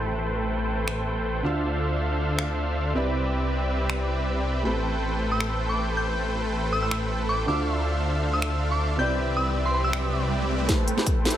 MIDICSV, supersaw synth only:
0, 0, Header, 1, 2, 480
1, 0, Start_track
1, 0, Key_signature, 0, "minor"
1, 0, Tempo, 377358
1, 155, Time_signature, 4, 2, 24, 8
1, 14464, End_track
2, 0, Start_track
2, 0, Title_t, "Supersaw synth"
2, 0, Program_c, 0, 81
2, 0, Note_on_c, 0, 57, 74
2, 0, Note_on_c, 0, 69, 67
2, 0, Note_on_c, 0, 71, 66
2, 0, Note_on_c, 0, 72, 67
2, 0, Note_on_c, 0, 79, 83
2, 1808, Note_off_c, 0, 57, 0
2, 1808, Note_off_c, 0, 69, 0
2, 1808, Note_off_c, 0, 71, 0
2, 1808, Note_off_c, 0, 79, 0
2, 1809, Note_off_c, 0, 72, 0
2, 1836, Note_on_c, 0, 62, 80
2, 1836, Note_on_c, 0, 69, 69
2, 1836, Note_on_c, 0, 72, 71
2, 1836, Note_on_c, 0, 76, 70
2, 1836, Note_on_c, 0, 77, 88
2, 3728, Note_off_c, 0, 62, 0
2, 3728, Note_off_c, 0, 69, 0
2, 3728, Note_off_c, 0, 72, 0
2, 3728, Note_off_c, 0, 76, 0
2, 3728, Note_off_c, 0, 77, 0
2, 3755, Note_on_c, 0, 60, 78
2, 3755, Note_on_c, 0, 67, 70
2, 3755, Note_on_c, 0, 71, 68
2, 3755, Note_on_c, 0, 74, 71
2, 3755, Note_on_c, 0, 76, 84
2, 5888, Note_off_c, 0, 60, 0
2, 5888, Note_off_c, 0, 67, 0
2, 5888, Note_off_c, 0, 71, 0
2, 5888, Note_off_c, 0, 74, 0
2, 5888, Note_off_c, 0, 76, 0
2, 5915, Note_on_c, 0, 57, 78
2, 5915, Note_on_c, 0, 69, 69
2, 5915, Note_on_c, 0, 71, 69
2, 5915, Note_on_c, 0, 72, 66
2, 5915, Note_on_c, 0, 79, 81
2, 9488, Note_off_c, 0, 57, 0
2, 9488, Note_off_c, 0, 69, 0
2, 9488, Note_off_c, 0, 71, 0
2, 9488, Note_off_c, 0, 72, 0
2, 9488, Note_off_c, 0, 79, 0
2, 9514, Note_on_c, 0, 76, 72
2, 9515, Note_on_c, 0, 62, 75
2, 9515, Note_on_c, 0, 69, 72
2, 9515, Note_on_c, 0, 72, 71
2, 9515, Note_on_c, 0, 77, 87
2, 11408, Note_off_c, 0, 62, 0
2, 11408, Note_off_c, 0, 69, 0
2, 11408, Note_off_c, 0, 72, 0
2, 11408, Note_off_c, 0, 76, 0
2, 11408, Note_off_c, 0, 77, 0
2, 11435, Note_on_c, 0, 60, 78
2, 11435, Note_on_c, 0, 67, 70
2, 11435, Note_on_c, 0, 71, 70
2, 11435, Note_on_c, 0, 74, 72
2, 11435, Note_on_c, 0, 76, 84
2, 13568, Note_off_c, 0, 60, 0
2, 13568, Note_off_c, 0, 67, 0
2, 13568, Note_off_c, 0, 71, 0
2, 13568, Note_off_c, 0, 74, 0
2, 13568, Note_off_c, 0, 76, 0
2, 13595, Note_on_c, 0, 57, 72
2, 13595, Note_on_c, 0, 69, 68
2, 13595, Note_on_c, 0, 71, 67
2, 13595, Note_on_c, 0, 72, 70
2, 13595, Note_on_c, 0, 79, 79
2, 14464, Note_off_c, 0, 57, 0
2, 14464, Note_off_c, 0, 69, 0
2, 14464, Note_off_c, 0, 71, 0
2, 14464, Note_off_c, 0, 72, 0
2, 14464, Note_off_c, 0, 79, 0
2, 14464, End_track
0, 0, End_of_file